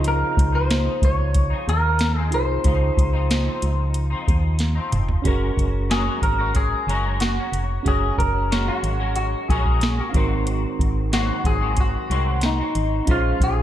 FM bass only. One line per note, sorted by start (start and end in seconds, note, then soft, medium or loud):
0.00 0.24 C#2 medium
0.37 0.89 C#2 loud
1.02 1.54 C#2 medium
1.68 2.34 D#2 medium
2.33 2.59 C2 medium
2.65 2.91 C#2 loud
2.97 3.49 C#2 loud
3.63 4.15 C#2 medium
4.28 4.80 D#2 loud
4.93 5.19 F1 medium
5.25 5.51 F#1 loud
5.57 6.10 F#1 loud
6.22 6.75 G#1 medium
6.87 7.40 F#1 medium
7.52 7.79 F1 medium
7.86 8.12 F#1 loud
8.18 8.70 F#1 loud
8.83 9.36 G#1 medium
9.49 10.01 A#1 loud
10.14 10.66 G#1 medium
10.79 11.32 G#1 loud
11.44 11.97 G#1 medium
12.10 12.62 C2 medium
12.75 13.01 G#1 medium
13.08 13.34 A#1 loud
13.40 13.63 A#1 loud